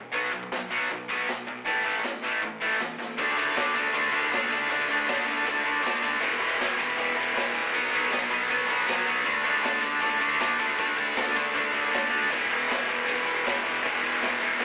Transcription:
Already playing: A#1 E2 B2
0.12 B1 B2 F#3 B3, kick, open hi-hat
0.32 B1 B2 F#3, open hi-hat
0.43 kick
0.52 B1 B2 F#3, snare, open hi-hat
0.70 B2 F#3 B3, open hi-hat
0.90 B1 B2 F#3, kick, open hi-hat
1.08 B1 B2 F#3 B3, kick, open hi-hat
1.27 B1 B2 F#3, snare, open hi-hat
1.47 B1 B2 F#3, kick, open hi-hat
1.65 A1 A2 E3 A3, kick, open hi-hat
1.84 A1 A2 E3 A3, open hi-hat
1.96 kick
2.04 A1 A2 E3, snare, open hi-hat
2.23 A1 A2 E3 A3, open hi-hat
2.42 A1 A2 E3, kick, open hi-hat
2.60 A1 A2 E3 A3, kick, open hi-hat
2.79 A1 A2 E3, snare, open hi-hat
2.97 A1 A2 E3, snare
3.17 D2 D3 A3 D4, kick, crash
3.36 D2 D3 A3 D4, crash
3.55 D2 D3 A3 D4, snare, crash
3.74 D2 D3 A3 D4, kick, crash
3.93 D2 D3 A3 D4, kick, crash
4.12 D2 D3 A3 D4, crash
4.32 D2 D3 A3 D4, snare, crash
4.51 D2 D3 A3 D4, kick, crash
4.69 D2 D3 A3 D4, kick, crash
4.89 D2 D3 A3 D4, crash
5.07 D2 D3 A3 D4, snare, crash
5.26 D2 D3 A3 D4, kick, crash
5.45 D2 D3 A3 D4, kick, crash
5.64 D2 D3 A3 D4, crash
5.82 D2 D3 A3 D4, crash
5.86 snare
6.01 D2 D3 A3 D4, kick, crash
6.20 E1 E2 B2 E3, kick, crash
6.39 E1 E2 B2 E3, crash
6.59 E1 E2 B2 E3, snare, crash
6.77 E1 E2 B2 E3, kick, crash
6.96 E1 E2 B2 E3, kick, crash
7.15 E1 E2 B2 E3, crash
7.35 E1 E2 B2 E3, snare, crash
7.54 A1 E2 B2 E3, kick, crash
7.72 B1 B2 F#3 B3, kick, crash
7.92 B1 B2 F#3 B3, crash
8.11 B1 B2 F#3 B3, snare, crash
8.30 B1 B2 F#3 B3, kick, crash
8.49 B1 B2 F#3 B3, kick, crash
8.66 B1 B2 F#3 B3
8.70 crash
8.87 B1 B2 F#3 B3, snare, crash
9.06 B1 B2 F#3 B3, kick, crash
9.25 D2 D3 A3 D4, kick, crash
9.44 D2 D3 A3 D4, crash
9.63 D2 D3 A3 D4, snare, crash
9.82 D2 D3 A3 D4, kick, crash
10.01 D2 D3 A3 D4, kick, crash
10.20 D2 D3 A3 D4, crash
10.39 D2 D3 A3 D4, snare, crash
10.58 D2 D3 A3 D4, kick, crash
10.78 D2 D3 A3 D4, kick, crash
10.97 D2 D3 A3 D4, crash
11.16 D2 D3 A3 D4, snare, crash
11.36 D2 D3 A3 D4, kick, crash
11.54 D2 D3 A3 D4, kick, crash
11.72 D2 D3 A3 D4, crash
11.92 D2 D3 A3 D4, snare, crash
12.10 D2 D3 A3 D4, kick
12.14 crash
12.29 E1 E2 B2 E3, kick, crash
12.49 E1 E2 B2 E3, crash
12.68 E1 E2 B2 E3, snare, crash
12.87 E1 E2 B2 E3, kick, crash
13.05 E1 E2 B2 E3, kick, crash
13.25 E1 E2 B2 E3, crash
13.44 E1 E2 B2 E3, snare, crash
13.64 E1 E2 B2 E3, kick, crash
13.82 E1 E2 B2 E3, kick, crash
14.01 E1 E2 B2 E3, crash
14.20 E1 E2 B2 E3, snare, crash
14.40 E1 E2 B2 E3, kick, crash
14.59 E1 E2 B2 E3, kick, snare

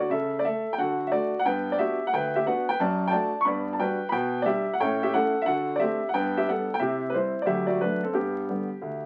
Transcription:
0.00 F#4
0.10 C#3 A4 E5
0.39 D5
0.44 A3 A4 E5
0.73 G5
0.78 D3 F#4 A4 F#5
1.07 E5
1.11 A3 D4 F#4 D5
1.39 F#5
1.45 G2 B3 B4 G5
1.72 D5
1.78 B3 D4 F#4 G4 E5
2.07 F#5
2.13 D2 B4 G5
2.36 G4 E5
2.46 B3 D4 F#4 B4 F#5
2.69 B4 G5
2.80 F#2 D5 A5
3.08 A3 D4 G5 A5
3.12 F#4 D5
3.41 C#6
3.45 G2 B3 D5 B5
3.73 A5
3.79 G3 D4 F#4 B4 G5
4.09 B2 B4 G5 B5
4.42 G3 D4 D5 E5
4.47 G4
4.74 F#5
4.80 A2 C#4 C#5 G5
5.03 G4 E5
5.13 A3 C#4 E4 A4 F#5
5.42 D3 E5
5.46 F#4 A4 F#5
5.76 A3 C4 D5 E5
5.80 D4 G4
6.09 F#5
6.14 G2 B3 B4 G5
6.37 G4 E5
6.48 G3 B3 D4 A4 F#5
6.74 G5
6.79 C3 E4 G4 E5
7.10 G3 B4
7.14 C4 E4 C5
7.42 D2 D5
7.46 F#3 G4 E5
7.67 F#4 D5
7.80 D3 F#3 A3 D4 B4
8.03 C4 A4
8.13 G2 B3 G4
8.49 D3 G3 B3
8.82 D2

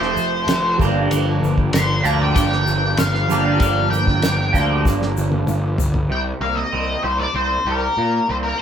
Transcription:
Already playing: F1 F3 A3 C4 G4 C5
0.02 snare
0.17 F1, shaker
0.47 F1, snare, ride bell, shaker
0.78 G1 G2 D3 F3 A#3 D4, kick, shaker
0.82 G4
1.11 G1, ride bell, shaker
1.42 G1, shaker
1.58 kick
1.73 G1 C6, snare, ride bell, shaker
2.04 D2 D3 F3 A#3 D4 G4 A#5, shaker
2.08 G2
2.21 G5
2.35 G1 G5, kick, ride bell, shaker
2.52 snare
2.66 G1, shaker
2.97 G1 F5, snare, ride bell, shaker
3.14 snare
3.29 G1 G2 D3 F3 A#3 D4, shaker
3.33 G4
3.59 G1 F5, kick, ride bell, shaker
3.90 G1 G5, shaker
4.07 kick, snare
4.22 G1, snare, ride bell, shaker
4.53 D2 G2 D3 F3 A#3 D4 G4, kick, shaker
4.85 G1, kick, snare, shaker
5.02 snare
5.16 G1, shaker
5.32 high tom
5.46 G1, mid tom, shaker
5.78 G1, floor tom, shaker
5.94 floor tom
6.10 C2 C3 G5
6.41 C2 A#3 F5
6.55 D#5
6.72 C2 C4
7.04 C2 G4 C5
7.20 D5
7.34 C2 C4 C5
7.65 C2 G4 A#4
7.97 A#2 A#3
8.29 C2 C4 C5
8.43 A#4

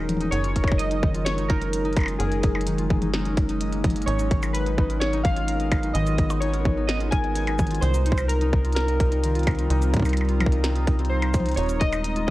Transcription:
Already playing: D#1 D#3 F#3 G#3 C#4 D#4 F4 A#4 D#5
0.09 closed hi-hat, high tom
0.17 closed hi-hat, high tom
0.21 D#4, high tom
0.31 F#1 D#4 C#5, closed hi-hat
0.44 F4, closed hi-hat
0.56 A#4, kick, closed hi-hat
0.64 D#5, kick, closed hi-hat, percussion blips
0.72 kick
0.78 D#4 D#5, closed hi-hat
0.91 D#4, closed hi-hat
1.03 D#3, kick
1.15 F4, closed hi-hat
1.25 C#5, snare, closed hi-hat
1.38 D#4, closed hi-hat
1.48 D#4 A#4, kick, closed hi-hat
1.61 A#4, closed hi-hat
1.73 closed hi-hat
1.85 D#4, closed hi-hat
1.93 closed hi-hat
1.97 D#4, kick, closed hi-hat, percussion blips
1.99 closed hi-hat, percussion blips
2.01 percussion blips
2.04 percussion blips
2.06 F4, closed hi-hat, percussion blips
2.19 F#1 G#4 A#4, closed hi-hat
2.32 D#5, closed hi-hat
2.43 D#4, kick, closed hi-hat
2.55 D#4, percussion blips
2.61 closed hi-hat
2.67 D#3, closed hi-hat
2.78 F4, closed hi-hat
2.90 kick, high tom
3.02 D#4, closed hi-hat, high tom
3.14 D#4, snare
3.25 A#4, closed hi-hat
3.37 kick, closed hi-hat
3.49 D#4, closed hi-hat
3.61 D#5, closed hi-hat
3.72 A#3, closed hi-hat
3.84 D#5, kick, closed hi-hat, high tom
3.87 closed hi-hat, high tom
3.90 high tom
3.93 A#3, closed hi-hat, high tom
4.02 closed hi-hat
4.06 G#1 D#4 C#5, closed hi-hat
4.19 D#4, closed hi-hat, cabasa
4.31 D#3, kick, closed hi-hat
4.43 F4, closed hi-hat, cabasa, percussion blips
4.53 B4, closed hi-hat
4.66 D#4, closed hi-hat
4.78 D#4, kick
4.90 A#4, closed hi-hat
5.00 C#5, snare, closed hi-hat
5.13 B3 D#4, closed hi-hat
5.23 F5, kick, closed hi-hat
5.37 F4, closed hi-hat
5.48 A#4, closed hi-hat
5.60 D#5, closed hi-hat
5.72 D#4, kick, closed hi-hat, percussion blips
5.83 D#4, closed hi-hat
5.94 G#1 D#3 D#5, closed hi-hat
6.07 F4, closed hi-hat, cabasa
6.18 kick, closed hi-hat
6.30 D#4, closed hi-hat, cabasa, percussion blips
6.40 D#4 C#5, closed hi-hat
6.54 A#4, closed hi-hat
6.65 kick, high tom
6.77 D#4
6.87 D#4 D#5, snare, closed hi-hat
7.00 F4, closed hi-hat
7.11 A#4 G#5, kick, closed hi-hat
7.24 D#5, closed hi-hat
7.36 D#4, closed hi-hat
7.47 D#4, closed hi-hat, percussion blips
7.59 D#3, kick, closed hi-hat, high tom, cabasa
7.67 closed hi-hat
7.71 F4, closed hi-hat
7.75 closed hi-hat
7.81 C2 G3 C5, closed hi-hat
7.94 D#4, closed hi-hat, cabasa
8.05 C4 D#4, closed hi-hat
8.12 kick
8.18 A#4, closed hi-hat, cabasa, percussion blips
8.28 A#4, closed hi-hat
8.41 D#4 F4, closed hi-hat
8.53 kick
8.65 F4, closed hi-hat
8.72 A#4, snare, closed hi-hat
8.76 A#4, closed hi-hat
8.80 closed hi-hat
8.88 D#5, closed hi-hat
9.00 D#4, kick, closed hi-hat
9.10 D#4 A#5, closed hi-hat
9.23 D#3, closed hi-hat
9.35 F4, closed hi-hat
9.39 closed hi-hat
9.43 kick, closed hi-hat
9.47 closed hi-hat, percussion blips
9.51 closed hi-hat
9.55 D#4, closed hi-hat
9.58 closed hi-hat
9.70 C2 D#4, closed hi-hat
9.82 A#4, closed hi-hat, cabasa
9.94 kick, closed hi-hat
9.97 kick
9.99 kick
10.02 D#4, kick, closed hi-hat, cabasa, percussion blips
10.09 closed hi-hat
10.13 closed hi-hat, percussion blips
10.17 D#4, closed hi-hat
10.21 closed hi-hat, percussion blips
10.25 closed hi-hat
10.29 F4, closed hi-hat
10.40 A#4, closed hi-hat, high tom, percussion blips
10.46 kick
10.52 D#5, closed hi-hat
10.64 D#4, snare, closed hi-hat
10.75 D#4, closed hi-hat
10.87 D#4, kick, closed hi-hat
10.99 C4, closed hi-hat
11.05 closed hi-hat
11.09 C5
11.22 F4, closed hi-hat, percussion blips
11.34 D#4, kick, closed hi-hat, cabasa
11.40 high tom
11.46 D#4, closed hi-hat
11.49 closed hi-hat
11.52 closed hi-hat
11.55 G#3 C#5, closed hi-hat
11.58 D#1 D#4, closed hi-hat
11.63 closed hi-hat
11.66 closed hi-hat
11.69 A#4, closed hi-hat, cabasa
11.80 C#4 D#5, kick, closed hi-hat
11.93 D#4, closed hi-hat, cabasa, percussion blips
12.04 D#4, closed hi-hat
12.16 F4, closed hi-hat
12.27 D#5

